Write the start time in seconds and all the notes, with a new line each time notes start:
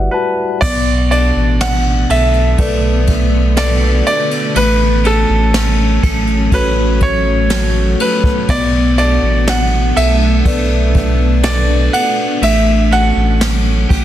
Already playing: G3 E4 F#4 G4 B4 D5 E5 F#5
0.11 F#4 B4 A5
0.61 B1 B2 D3 A3 B3 D5, kick, crash
1.11 D4 F#4 A4 D5, ride
1.36 A1
1.61 D4 F#5, snare, ride
2.10 B1 A4 E5, ride
2.33 ride
2.58 B1 A3 A4 B4 D5, kick, ride
3.07 kick, ride
3.57 D4 F#4 A4 B4 D5, snare, ride
4.06 D5, ride
4.31 ride
4.55 A1 F#3 A3 C#4 B4, ride
5.04 C#4 F#4 A4, ride
5.30 A1
5.54 C#4, snare, ride
6.03 A1 A4, kick, ride
6.27 ride
6.51 A1 B3 C#4 F#4 A4 B4 C#5, kick, ride
7.00 C#5, kick, ride
7.50 C#4 F#4 A4 C#5, snare, ride
8.00 B4, ride
8.24 kick
8.49 B1 B2 B3 D4 D5, kick, ride
8.98 D4 F#4 A4 D5, ride
9.22 A1
9.47 D4 F#5, snare, ride
9.96 B1 A4 E5, ride
10.45 B1 A3 A4 B4 D5, kick, ride
10.95 kick, ride
11.43 D4 F#4 A4 B4 D5, snare, ride
11.93 F#5, ride
12.42 A1 F#3 A3 C#4 E5, ride
12.91 C#4 F#4 A4 F#5, ride
13.16 A1
13.40 C#4, snare, ride
13.89 A1 G4, kick, ride